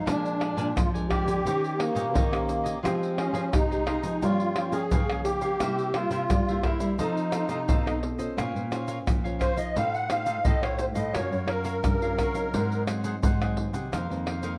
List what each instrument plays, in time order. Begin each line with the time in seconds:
0.06 nylon-string guitar A#2 F3 G#3 D4, cavaquinho D4 A#4 D5 G#5, accordion D4, pandeiro, tamborim, shaker, surdo
0.26 pandeiro, shaker
0.40 cavaquinho D4 A#4 D5 G#5, pandeiro, tamborim
0.57 nylon-string guitar A#2, cavaquinho D4 A#4 D5 G#5, pandeiro, shaker
0.76 nylon-string guitar F2 F3 G#3 D4, accordion F4, pandeiro, tamborim, shaker, surdo
0.94 nylon-string guitar F3 G#3 D4, cavaquinho A#4 D5 G#5, pandeiro, shaker
1.09 nylon-string guitar F3 G#3 D4, cavaquinho D4 A#4 D5 G#5, accordion G4, pandeiro, tamborim, surdo
1.26 nylon-string guitar D3, cavaquinho A#4 D5 G#5, pandeiro, shaker
1.45 nylon-string guitar D#3 C#4 G4 C5, cavaquinho D#4 G4 C#5 D#5, pandeiro, shaker, surdo
1.64 pandeiro, shaker
1.79 accordion A#3, nylon-string guitar C#4 G4 C5, cavaquinho D#4 G4 C#5 D#5, pandeiro, tamborim
1.95 nylon-string guitar A#2, cavaquinho D#4 G4 C#5 D#5, pandeiro, shaker
2.14 nylon-string guitar A#2 D#3, cavaquinho D#4 G4 C#5 D#5, pandeiro, shaker, surdo
2.32 nylon-string guitar C#4 G4 C5, cavaquinho G4 C#5 D#5, pandeiro, tamborim, shaker
2.49 pandeiro, shaker
2.64 cavaquinho G4 C#5 D#5, pandeiro, shaker
2.83 nylon-string guitar F3 G#3 D#4 G4, accordion C4, cavaquinho F4 G#4 C5 D#5, pandeiro, tamborim, shaker, surdo
3.03 pandeiro, shaker
3.17 accordion C#4, cavaquinho F4 G#4 C5 D#5, pandeiro, tamborim
3.33 nylon-string guitar F3, cavaquinho F4 G#4 C5 D#5, pandeiro, shaker
3.52 nylon-string guitar C3 G#3 D#4 G4, accordion D#4, pandeiro, tamborim, shaker, surdo
3.70 nylon-string guitar G#3 D#4 G4, cavaquinho G#4 C5 D#5, pandeiro, shaker
3.86 nylon-string guitar G#3 D#4 G4, cavaquinho F4 G#4 C5 D#5, pandeiro, tamborim
4.03 nylon-string guitar F3, cavaquinho G#4 C5 D#5, pandeiro, shaker
4.22 nylon-string guitar G2 F3 G3 A#3 C#4, accordion F4, cavaquinho G4 A#4 C#5 F5, pandeiro, shaker, surdo
4.40 pandeiro, shaker
4.56 nylon-string guitar F3 A#3 C#4, cavaquinho G4 A#4 C#5 F5, pandeiro, tamborim
4.71 nylon-string guitar C#4, cavaquinho G4 A#4 C#5 F5, accordion G#4, pandeiro, shaker
4.91 nylon-string guitar G2 C#3, cavaquinho G4 A#4 C#5 F5, pandeiro, shaker, surdo
5.09 nylon-string guitar F3 A#3 C#4, cavaquinho A#4 C#5 F5, pandeiro, tamborim, shaker
5.24 accordion G4, pandeiro, shaker
5.41 cavaquinho A#4 C#5 F5, pandeiro, shaker
5.60 nylon-string guitar C3 G3 A#3 E4, cavaquinho E4 A#4 C5 E5, pandeiro, tamborim, shaker, surdo
5.79 pandeiro, shaker
5.94 nylon-string guitar G3 A#3, cavaquinho E4 A#4 C5 E5, accordion F4, pandeiro, tamborim
6.10 nylon-string guitar C3, cavaquinho E4 A#4 C5 E5, pandeiro, shaker
6.29 nylon-string guitar G2 G3, pandeiro, tamborim, shaker, surdo
6.48 nylon-string guitar G3 A#3 E4, cavaquinho A#4 C5 E5, pandeiro, shaker
6.63 accordion E4, cavaquinho E4 A#4 C5 E5, pandeiro, tamborim, surdo
6.79 nylon-string guitar G3, cavaquinho A#4 C5 E5, pandeiro, shaker
6.98 nylon-string guitar F3 C4 D#4 A4, accordion D#4, cavaquinho F4 A4 C5 D#5, pandeiro, shaker, surdo
7.17 pandeiro, shaker
7.32 nylon-string guitar C4 D#4 A4, cavaquinho F4 A4 C5 D#5, pandeiro, tamborim, shaker
7.48 nylon-string guitar C3, cavaquinho F4 A4 C5 D#5, pandeiro, shaker
7.68 nylon-string guitar B2, cavaquinho F4 A4 C5 D#5, pandeiro, shaker, surdo
7.86 nylon-string guitar C4 D#4 A4, cavaquinho A4 C5 D#5, pandeiro, tamborim, shaker
8.03 pandeiro
8.18 nylon-string guitar C#4 F4 C5, cavaquinho A4 C5 D#5, pandeiro, shaker
8.37 nylon-string guitar A#2 A#3, cavaquinho F4 A#4 C#5 F5, pandeiro, tamborim, shaker, surdo
8.55 nylon-string guitar A#2, pandeiro, shaker
8.71 nylon-string guitar C#4 F4 C5, cavaquinho F4 A#4 C#5 F5, pandeiro, tamborim, shaker
8.88 cavaquinho F4 A#4 C#5 F5, pandeiro, shaker
9.07 nylon-string guitar A#2 F3, pandeiro, tamborim, shaker, surdo
9.24 nylon-string guitar C#4 F4 C5, cavaquinho A#4 C#5 F5, pandeiro, shaker
9.39 cavaquinho F4 A#4 C#5 F5, accordion C5, pandeiro, tamborim, shaker, surdo
9.56 nylon-string guitar D#4 F4 C5, cavaquinho A#4 C#5 F5, accordion D#5, pandeiro, shaker
9.75 nylon-string guitar A2 A3, cavaquinho D#4 A4 C5 F5, accordion F5, pandeiro, shaker, surdo
9.94 accordion F#5, pandeiro, shaker
10.08 nylon-string guitar D#4 F4 C5, cavaquinho D#4 A4 C5 F5, accordion F5, pandeiro, tamborim, shaker
10.26 cavaquinho D#4 A4 C5 F5, pandeiro, shaker
10.44 nylon-string guitar A2 A3, cavaquinho D#4 A4 C5 F5, accordion D#5, pandeiro, shaker, surdo
10.62 nylon-string guitar D#4 F4 C5, cavaquinho A4 C5 F5, accordion C#5, pandeiro, tamborim, shaker
10.77 accordion C5, pandeiro, shaker
10.94 nylon-string guitar A2, cavaquinho A4 C5 F5, accordion D#5, pandeiro, shaker
11.13 nylon-string guitar F#2 F#3 C#4 F4 A#4, cavaquinho F#4 A#4 C#5 F5, accordion C#5, pandeiro, tamborim, shaker, surdo
11.32 nylon-string guitar F#2, pandeiro, shaker
11.47 nylon-string guitar C#4 F4 A#4, cavaquinho F#4 A#4 C#5 F5, accordion A#4, pandeiro, tamborim
11.65 cavaquinho F#4 A#4 C#5 F5, pandeiro, shaker
11.83 nylon-string guitar G2 C#3, pandeiro, tamborim, shaker, surdo
12.02 nylon-string guitar C#4 F4 A#4, cavaquinho A#4 C#5 F5, pandeiro, shaker
12.18 cavaquinho F#4 A#4 C#5 F5, pandeiro, tamborim, shaker, surdo
12.34 nylon-string guitar F#3 C4 D#4, cavaquinho A#4 C#5 F5, pandeiro, shaker
12.53 nylon-string guitar G#2, cavaquinho D#4 G#4 C5 F#5, pandeiro, shaker, surdo
12.72 pandeiro, shaker
12.87 nylon-string guitar F#3 C4 D#4, cavaquinho D#4 G#4 C5 F#5, pandeiro, tamborim, shaker
13.04 cavaquinho D#4 G#4 C5 F#5, pandeiro, shaker
13.22 nylon-string guitar G#2 D#3, cavaquinho D#4 G#4 C5 F#5, pandeiro, shaker, surdo
13.41 nylon-string guitar F#3 C4 D#4, cavaquinho G#4 C5 F#5, pandeiro, tamborim, shaker
13.57 pandeiro
13.73 nylon-string guitar C3, cavaquinho G#4 C5 F#5, pandeiro, shaker
13.92 nylon-string guitar F2 D#3 A#3 C4, cavaquinho D#4 A#4 C5 F5, pandeiro, tamborim, shaker, surdo
14.10 nylon-string guitar F2 D#3 A#3 C4, pandeiro, shaker
14.26 cavaquinho D#4 A#4 C5 F5, pandeiro, tamborim
14.43 nylon-string guitar D#3 A#3 C4, cavaquinho D#4 A#4 C5 F5, pandeiro, shaker